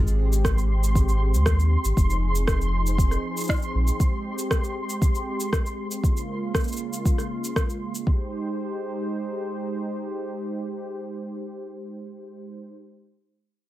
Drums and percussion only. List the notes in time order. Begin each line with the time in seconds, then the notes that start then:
0.00 mid tom
0.07 cabasa
0.33 cabasa
0.45 kick, cross-stick, cabasa
0.58 cabasa
0.84 cabasa
0.95 kick, cabasa
1.09 cabasa
1.34 cabasa
1.46 kick, cross-stick, cabasa
1.60 cabasa
1.85 cabasa
1.97 kick, cabasa
2.10 cabasa
2.35 cabasa
2.48 kick, cross-stick, cabasa
2.62 cabasa
2.87 cabasa
2.98 kick, cabasa
3.11 cross-stick, cabasa
3.37 cabasa
3.40 cabasa
3.44 cabasa
3.49 kick, cross-stick
3.56 cabasa
3.59 cabasa
3.62 cabasa
3.88 cabasa
4.00 kick, cabasa
4.39 cabasa
4.51 kick, cross-stick, cabasa
4.64 cabasa
4.90 cabasa
5.02 kick, cabasa
5.15 cabasa
5.40 cabasa
5.53 kick, cross-stick, cabasa
5.66 cabasa
5.91 cabasa
6.04 kick, cabasa
6.17 cabasa
6.54 kick, cross-stick, cabasa
6.60 cabasa
6.64 cabasa
6.68 cabasa
6.72 cabasa
6.77 cabasa
6.93 cabasa
7.05 kick, cabasa
7.18 cross-stick, cabasa
7.44 cabasa
7.56 kick, cross-stick, cabasa
7.70 cabasa
7.95 cabasa
8.07 kick